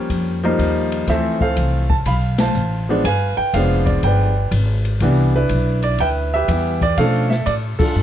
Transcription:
Already playing: grand piano F3 G3 A#3 C#4 A#4 C#5 G5
0.10 upright bass F2, kick, ride
0.43 grand piano F3 G3 A#3 D#4
0.59 upright bass D#2, kick, hi-hat pedal, ride
0.92 ride
1.07 upright bass D2, grand piano E3 F3 A3 C4 A4 C5 E5, kick, snare, ride
1.41 grand piano A4 C5 F5, kick
1.56 upright bass C2, kick, hi-hat pedal, ride
1.90 grand piano A5, kick
2.06 upright bass B1, grand piano F5 B5, kick, ride
2.38 grand piano C5 A5, snare, ride
2.43 grand piano F5
2.55 upright bass A1, hi-hat pedal
2.89 grand piano F3 G#3 B3 D4
3.04 upright bass G1, grand piano B4 F5 G#5, kick, ride
3.37 grand piano G5, muted upright bass stroke
3.54 upright bass F1, grand piano F3 G#3 B3 D4 F5, kick, hi-hat pedal, ride
3.86 grand piano D5, kick, ride
4.03 upright bass G1, grand piano B4 G5, kick, ride
4.07 grand piano D5
4.51 upright bass G#1, kick, hi-hat pedal, ride
4.85 ride
5.00 upright bass C2, grand piano E3 G3 B3 D4, kick, ride
5.36 grand piano D4 E4 B4
5.49 upright bass B1, kick, hi-hat pedal, ride
5.82 grand piano D5, ride
5.98 upright bass D2, grand piano B4 E5 G5, kick, ride
6.34 grand piano G4 B4 E5
6.48 upright bass E2, grand piano E3 G3 B3 E4, kick, hi-hat pedal, ride
6.81 grand piano D5, kick, ride
6.97 upright bass B2, grand piano F3 A3 C#4 D4 A4 D5 F5, kick, ride
7.30 grand piano E5, snare
7.46 upright bass A2, grand piano D5, kick, hi-hat pedal, ride
7.79 grand piano D4 F4 A4, muted upright bass stroke, kick, crash
7.96 upright bass G2

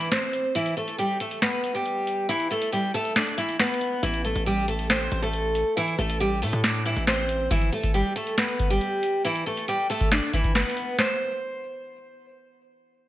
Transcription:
0.01 closed hi-hat
0.11 steel-string acoustic guitar C4 C5, snare, closed hi-hat
0.33 closed hi-hat
0.55 steel-string acoustic guitar E3 E4, closed hi-hat
0.66 closed hi-hat
0.77 steel-string acoustic guitar A3 A4, closed hi-hat
0.88 closed hi-hat
0.98 steel-string acoustic guitar G3 G4, closed hi-hat
1.20 steel-string acoustic guitar A3 A4, closed hi-hat
1.31 closed hi-hat
1.42 steel-string acoustic guitar B3 B4, snare, closed hi-hat
1.53 closed hi-hat
1.64 closed hi-hat
1.75 steel-string acoustic guitar G3 G4, closed hi-hat
1.86 closed hi-hat
2.07 closed hi-hat
2.29 steel-string acoustic guitar E3 E4, closed hi-hat
2.40 closed hi-hat
2.51 steel-string acoustic guitar A3 A4, closed hi-hat
2.62 closed hi-hat
2.72 steel-string acoustic guitar G3 G4, closed hi-hat
2.94 steel-string acoustic guitar A3 A4, closed hi-hat
3.05 closed hi-hat
3.16 steel-string acoustic guitar D4 D5, snare, closed hi-hat
3.27 closed hi-hat
3.38 steel-string acoustic guitar E3 E4, closed hi-hat
3.49 closed hi-hat
3.59 steel-string acoustic guitar B3 B4, snare, closed hi-hat
3.67 closed hi-hat
3.74 closed hi-hat
3.81 closed hi-hat
4.03 808-style bass A1, steel-string acoustic guitar E3 E4, closed hi-hat
4.14 closed hi-hat
4.25 steel-string acoustic guitar A3 A4, closed hi-hat
4.36 808-style bass A1, closed hi-hat
4.46 steel-string acoustic guitar G3 G4, closed hi-hat
4.68 steel-string acoustic guitar A3 A4, closed hi-hat
4.79 closed hi-hat
4.90 steel-string acoustic guitar C4 C5, snare, closed hi-hat
5.01 closed hi-hat
5.12 808-style bass A1, closed hi-hat
5.22 steel-string acoustic guitar A3 A4, closed hi-hat
5.33 closed hi-hat
5.55 closed hi-hat
5.77 steel-string acoustic guitar E3 E4, closed hi-hat
5.88 closed hi-hat
5.99 808-style bass A1, steel-string acoustic guitar A3 A4, closed hi-hat
6.10 closed hi-hat
6.20 steel-string acoustic guitar G3 G4, closed hi-hat
6.42 808-style bass A2, steel-string acoustic guitar A3 A4, open hi-hat
6.53 808-style bass A2, closed hi-hat
6.64 steel-string acoustic guitar D4 D5, snare, closed hi-hat
6.75 closed hi-hat
6.86 steel-string acoustic guitar E3 E4, closed hi-hat
6.96 808-style bass A1, closed hi-hat
7.07 steel-string acoustic guitar C4 C5, snare, closed hi-hat
7.29 closed hi-hat
7.51 steel-string acoustic guitar E3 E4, kick, closed hi-hat
7.62 closed hi-hat
7.72 steel-string acoustic guitar A3 A4, closed hi-hat
7.83 kick, closed hi-hat
7.94 steel-string acoustic guitar G3 G4, closed hi-hat
8.16 steel-string acoustic guitar A3 A4, closed hi-hat
8.27 closed hi-hat
8.38 steel-string acoustic guitar B3 B4, snare, closed hi-hat
8.49 closed hi-hat
8.59 kick, closed hi-hat
8.70 steel-string acoustic guitar G3 G4, closed hi-hat
8.81 closed hi-hat
9.03 closed hi-hat
9.25 steel-string acoustic guitar E3 E4, closed hi-hat
9.35 closed hi-hat
9.46 steel-string acoustic guitar A3 A4, closed hi-hat
9.57 closed hi-hat
9.68 steel-string acoustic guitar G3 G4, closed hi-hat
9.90 steel-string acoustic guitar A3 A4, closed hi-hat
10.01 kick, closed hi-hat
10.12 steel-string acoustic guitar D4 D5, snare, closed hi-hat
10.22 closed hi-hat
10.33 steel-string acoustic guitar E3 E4, kick, closed hi-hat
10.44 kick, closed hi-hat
10.55 steel-string acoustic guitar B3 B4, snare, closed hi-hat
10.62 closed hi-hat
10.70 closed hi-hat
10.77 closed hi-hat
10.99 steel-string acoustic guitar C5, snare

